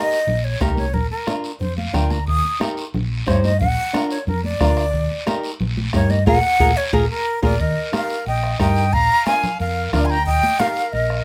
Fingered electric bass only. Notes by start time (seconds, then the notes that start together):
0.27 A#1
0.61 C2
0.94 A#1
1.60 F2
1.94 D2
2.28 D#2
2.94 A#1
3.28 G2
3.61 A#1
4.27 F2
4.61 D2
4.94 D#2
5.61 A#1
5.93 G2
6.27 A#1
6.60 A#1
6.93 A#1
7.43 A#1
7.60 D#2
8.27 A#1
8.60 G2
8.93 A#1
9.60 F2
9.93 D2
10.27 D#2
10.93 A#1